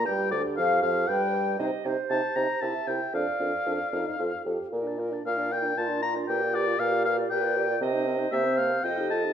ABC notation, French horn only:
X:1
M:3/4
L:1/16
Q:1/4=116
K:Cdor
V:1 name="French horn"
G,2 D,2 F,2 F,2 G,4 | E2 E2 E2 E2 =E2 E2 | D2 D2 D2 E2 F2 G2 | F D F D F D F D F D F D |
G F G F G F G F G F G F | C E C E B, C B, C F E F E |]